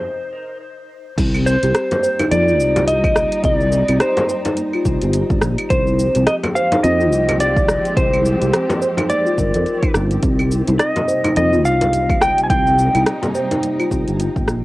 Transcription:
Already playing: electric slide guitar C5
1.18 fretless electric bass C2, steel tongue drum C4, kick, closed hi-hat, crash, cabasa
1.34 cabasa, claves
1.46 string section G3, electric slide guitar C5, cabasa
1.63 fretless electric bass C2, steel tongue drum G4, closed hi-hat, cabasa
1.75 cross-stick, closed hi-hat, cabasa
1.89 steel tongue drum A#3, string section D#4, closed hi-hat, frame drum, cabasa
2.03 steel tongue drum C5, cabasa
2.19 steel tongue drum D#4, closed hi-hat, frame drum, cabasa, claves
2.31 fretless electric bass F2, steel tongue drum A#3, electric slide guitar D5, closed hi-hat, cabasa
2.48 steel tongue drum F4, cabasa
2.60 fretless electric bass C2, cabasa
2.76 steel tongue drum G4, closed hi-hat, frame drum, cabasa
2.88 electric slide guitar D#5, closed hi-hat, cabasa
3.04 steel tongue drum A#3, kick, cabasa, claves
3.16 cross-stick, cabasa
3.32 closed hi-hat, cabasa
3.44 fretless electric bass C2, steel tongue drum C4, electric slide guitar D5, kick, closed hi-hat, cabasa
3.61 cabasa
3.72 cabasa
3.89 fretless electric bass C2, steel tongue drum G4, closed hi-hat, cabasa, claves
4.00 electric slide guitar C5, cross-stick, closed hi-hat, cabasa
4.17 steel tongue drum A#3, closed hi-hat, frame drum, cabasa
4.29 steel tongue drum C5, cabasa
4.45 steel tongue drum D#4, closed hi-hat, frame drum, cabasa
4.57 steel tongue drum A#3, closed hi-hat, cabasa
4.73 steel tongue drum F4, cabasa, claves
4.85 fretless electric bass C2, kick, cabasa
5.02 fretless electric bass G1, steel tongue drum G4, closed hi-hat, cabasa
5.13 closed hi-hat, cabasa
5.30 fretless electric bass G1, steel tongue drum A#3, kick, cabasa
5.42 fretless electric bass A#1, cross-stick, cabasa
5.58 closed hi-hat, cabasa, claves
5.70 fretless electric bass C2, string section F3, steel tongue drum C4, electric slide guitar C5, kick, closed hi-hat, cabasa
5.87 cabasa
5.93 string section G4
5.99 cabasa
6.15 fretless electric bass C2, steel tongue drum G4, closed hi-hat, cabasa
6.22 string section G#3
6.27 electric slide guitar D#5, cross-stick, closed hi-hat, cabasa
6.38 string section C4
6.43 steel tongue drum A#3, closed hi-hat, frame drum, cabasa, claves
6.55 steel tongue drum C5, electric slide guitar F5, cabasa
6.72 steel tongue drum D#4, closed hi-hat, frame drum, cabasa
6.83 fretless electric bass F2, steel tongue drum A#3, electric slide guitar D#5, closed hi-hat, cabasa
7.00 steel tongue drum F4, cabasa
7.12 fretless electric bass C2, cabasa
7.28 steel tongue drum G4, closed hi-hat, frame drum, cabasa, claves
7.40 electric slide guitar D5, closed hi-hat, cabasa
7.56 steel tongue drum A#3, kick, cabasa
7.68 cross-stick, cabasa
7.85 closed hi-hat, cabasa
7.97 fretless electric bass C2, steel tongue drum C4, electric slide guitar C5, kick, closed hi-hat, cabasa
8.13 cabasa, claves
8.25 cabasa
8.41 fretless electric bass C2, steel tongue drum G4, closed hi-hat, cabasa
8.53 cross-stick, closed hi-hat, cabasa
8.69 steel tongue drum A#3, closed hi-hat, frame drum, cabasa
8.82 steel tongue drum C5, cabasa
8.97 steel tongue drum D#4, closed hi-hat, frame drum, cabasa, claves
9.09 steel tongue drum A#3, electric slide guitar D5, closed hi-hat, cabasa
9.26 steel tongue drum F4, cabasa
9.38 fretless electric bass G1, steel tongue drum A#4, kick, cabasa
9.54 fretless electric bass F2, steel tongue drum A#4, closed hi-hat, cabasa
9.66 closed hi-hat, cabasa
9.83 steel tongue drum D#4, kick, closed hi-hat, cabasa, claves
9.94 fretless electric bass G1, steel tongue drum C4, cross-stick, cabasa
10.11 closed hi-hat, cabasa
10.23 fretless electric bass C2, string section C3, steel tongue drum C4, kick, closed hi-hat, cabasa
10.39 cabasa, claves
10.51 cabasa
10.68 fretless electric bass C2, steel tongue drum D#4, closed hi-hat, cabasa
10.78 string section G3, electric slide guitar D#5, cross-stick, closed hi-hat, cabasa
10.96 steel tongue drum A#3, closed hi-hat, frame drum, cabasa
11.08 steel tongue drum C5, cabasa
11.24 steel tongue drum D#4, closed hi-hat, frame drum, cabasa, claves
11.36 fretless electric bass F2, steel tongue drum A#3, electric slide guitar D#5, closed hi-hat, cabasa
11.52 steel tongue drum F4, cabasa
11.65 fretless electric bass C2, electric slide guitar F5, cabasa
11.81 steel tongue drum G4, closed hi-hat, frame drum, cabasa
11.93 closed hi-hat, cabasa
12.09 steel tongue drum A#3, kick, cabasa, claves
12.21 electric slide guitar G5, cross-stick, cabasa
12.28 string section D#4
12.38 closed hi-hat, cabasa
12.44 electric slide guitar G#5
12.50 fretless electric bass C2, steel tongue drum C4, electric slide guitar G5, kick, closed hi-hat, cabasa
12.67 cabasa
12.78 cabasa
12.95 fretless electric bass C2, steel tongue drum D#4, closed hi-hat, cabasa, claves
13.06 cross-stick, closed hi-hat, cabasa
13.23 steel tongue drum A#3, closed hi-hat, frame drum, cabasa
13.35 steel tongue drum C5, cabasa
13.51 steel tongue drum D#4, closed hi-hat, frame drum, cabasa
13.63 steel tongue drum A#3, closed hi-hat, cabasa
13.80 steel tongue drum F4, cabasa, claves
13.91 fretless electric bass C2, kick, cabasa
14.08 fretless electric bass G1, steel tongue drum G4, closed hi-hat, cabasa
14.20 closed hi-hat, cabasa
14.36 fretless electric bass G1, steel tongue drum A#3, kick, cabasa
14.48 fretless electric bass A#1, cross-stick, cabasa

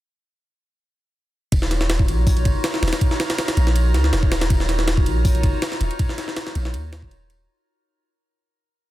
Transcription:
1.52 808-style bass D#1, synth texture A#4 A#5, kick, ride
1.62 snare
1.71 snare, ride
1.81 snare
1.90 snare, ride
1.99 kick
2.08 808-style bass A#1, ride
2.27 kick, open hi-hat
2.37 ride
2.45 808-style bass F#1, kick, ride
2.64 snare, ride
2.74 snare
2.82 808-style bass D#1, snare, ride
2.88 snare, ride
2.93 snare, ride
3.01 kick, ride
3.11 snare
3.20 snare, ride
3.30 snare, ride
3.38 snare, ride
3.48 snare, ride
3.57 808-style bass A#1, ride
3.67 snare
3.76 ride
3.94 808-style bass C#2, snare, ride
4.04 snare
4.13 808-style bass D#1, snare, ride
4.23 kick
4.32 snare, ride
4.41 snare, ride
4.50 808-style bass D#1, kick, ride
4.60 snare
4.69 snare, ride
4.79 snare
4.88 snare, ride
4.97 kick
5.06 808-style bass A#1, ride
5.25 kick, open hi-hat
5.35 ride
5.43 808-style bass F#1, kick, ride
5.62 snare, ride
5.72 snare
5.81 808-style bass D#1, ride
5.91 ride
5.99 kick, ride
6.09 snare
6.18 snare, ride
6.28 snare
6.37 snare, ride
6.47 snare
6.55 808-style bass A#1, ride
6.65 snare
6.74 808-style bass D#2, ride
6.93 snare, ride
7.02 808-style bass D#1, kick
7.11 ride
7.30 ride

